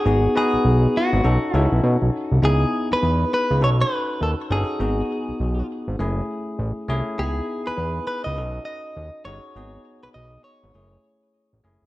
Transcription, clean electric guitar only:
0.00 0.36 G#4 loud
0.37 0.97 G#4 loud
0.97 1.57 F#4 medium
1.57 1.81 E4 medium
2.45 2.88 G#4 medium
2.93 3.33 B4 loud
3.34 3.60 B4 loud
3.64 3.69 C#5 loud
3.81 4.22 B4 loud
4.23 4.31 A4 loud
4.52 5.66 G#4 medium
7.19 7.68 G#4 medium
7.67 8.06 B4 medium
8.07 8.24 B4 loud
8.24 8.63 D#5 loud
8.65 9.25 D#5 loud
9.25 10.03 C#5 loud
10.03 10.08 B4 medium
10.14 10.42 D#5 loud
10.44 11.59 C#5 medium

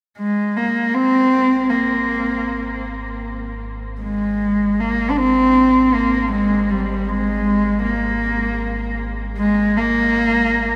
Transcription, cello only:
0.18 0.58 G#3 medium
0.56 0.96 A#3 medium
0.94 1.71 C4 loud
1.70 2.85 A#3 medium
4.02 4.81 G#3 medium
4.80 5.11 A#3 medium
5.10 5.18 D4 medium
5.16 5.96 C4 loud
5.94 6.32 A#3 medium
6.32 6.72 G#3 medium
6.70 7.11 G3 medium
7.09 7.84 G#3 medium
7.84 8.96 A#3 medium
9.39 9.79 G#3 medium
9.77 10.76 A#3 medium

